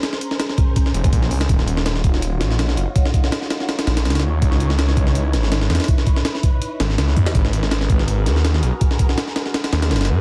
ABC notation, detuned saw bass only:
X:1
M:4/4
L:1/8
Q:"Swing 16ths" 1/4=164
K:Ebm
V:1 name="Detuned saw bass" clef=bass
z4 z F,,, B,,, D,, | E,,,4- E,,, B,,,2 G,,, | z4 z B,,, D,, E,, | D,,4- D,, A,,,2 _F,, |
z4 z A,,, D,, _F,, | A,,,4- A,,, E,,2 C,, | z4 z E,, G,,, A,, |]